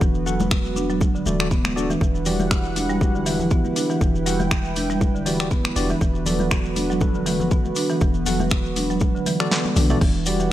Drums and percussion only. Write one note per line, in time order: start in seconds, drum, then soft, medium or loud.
0.01 kick loud
0.01 shekere medium
0.15 shekere soft
0.27 shekere medium
0.40 high conga loud
0.40 shekere soft
0.51 finger snap loud
0.51 kick loud
0.51 shekere medium
0.65 shekere soft
0.76 high conga medium
0.76 shekere medium
0.90 shekere soft
1.01 kick loud
1.01 high conga medium
1.01 shekere medium
1.16 shekere soft
1.26 high conga medium
1.26 shekere loud
1.40 finger snap medium
1.40 shekere soft
1.51 kick loud
1.51 shekere medium
1.64 finger snap medium
1.64 high conga medium
1.64 shekere soft
1.78 shekere loud
1.90 high conga medium
1.90 shekere soft
2.01 kick loud
2.01 shekere medium
2.15 shekere soft
2.26 open hi-hat medium
2.26 low conga medium
2.26 shekere medium
2.40 high conga loud
2.40 shekere soft
2.51 finger snap medium
2.51 kick loud
2.51 shekere medium
2.65 shekere soft
2.76 open hi-hat medium
2.76 high conga medium
2.76 shekere medium
2.90 shekere soft
3.01 kick loud
3.01 high conga medium
3.01 low conga medium
3.01 shekere medium
3.15 shekere soft
3.26 open hi-hat medium
3.26 high conga medium
3.26 shekere medium
3.39 low conga medium
3.39 shekere soft
3.50 kick loud
3.50 shekere medium
3.65 high conga medium
3.65 shekere soft
3.76 open hi-hat medium
3.76 shekere medium
3.90 shekere soft
4.01 kick loud
4.01 shekere medium
4.15 shekere soft
4.26 open hi-hat medium
4.26 shekere medium
4.40 high conga medium
4.40 shekere soft
4.51 finger snap medium
4.51 kick loud
4.51 shekere medium
4.65 shekere soft
4.76 open hi-hat medium
4.76 high conga medium
4.76 shekere medium
4.90 shekere soft
5.01 kick loud
5.01 high conga medium
5.01 shekere soft
5.16 shekere soft
5.26 open hi-hat medium
5.26 high conga medium
5.26 shekere medium
5.40 finger snap medium
5.40 shekere soft
5.51 kick loud
5.51 shekere soft
5.65 finger snap medium
5.65 high conga medium
5.65 shekere soft
5.76 open hi-hat medium
5.76 shekere loud
5.89 high conga medium
5.89 shekere soft
6.01 kick loud
6.01 shekere medium
6.15 shekere soft
6.26 open hi-hat medium
6.26 low conga medium
6.26 shekere medium
6.39 high conga loud
6.39 shekere soft
6.51 finger snap medium
6.51 kick loud
6.51 shekere soft
6.65 shekere soft
6.76 open hi-hat medium
6.76 high conga medium
6.76 shekere medium
6.91 shekere soft
7.01 kick loud
7.01 high conga medium
7.01 low conga medium
7.01 shekere soft
7.14 shekere soft
7.26 open hi-hat medium
7.26 high conga medium
7.26 shekere medium
7.40 low conga medium
7.40 shekere soft
7.51 kick loud
7.51 shekere soft
7.65 high conga medium
7.65 shekere soft
7.76 open hi-hat medium
7.76 shekere medium
7.90 shekere soft
8.01 kick loud
8.01 shekere medium
8.14 shekere soft
8.26 open hi-hat medium
8.26 low conga medium
8.26 shekere medium
8.39 high conga loud
8.39 shekere soft
8.50 finger snap medium
8.50 kick loud
8.50 shekere medium
8.65 shekere soft
8.76 open hi-hat medium
8.76 high conga medium
8.76 shekere medium
8.90 shekere soft
9.00 kick loud
9.00 high conga medium
9.00 shekere medium
9.16 shekere soft
9.26 open hi-hat medium
9.26 high conga medium
9.26 shekere medium
9.40 finger snap medium
9.40 shekere soft
9.51 snare medium
9.51 shekere soft
9.65 high tom medium
9.65 high conga medium
9.65 shekere soft
9.76 open hi-hat medium
9.76 mid tom medium
9.76 low conga medium
9.76 shekere medium
9.89 mid tom medium
9.89 high conga medium
9.89 shekere soft
10.01 kick loud
10.01 crash loud
10.01 shekere soft
10.26 open hi-hat loud
10.26 shekere loud
10.40 shekere medium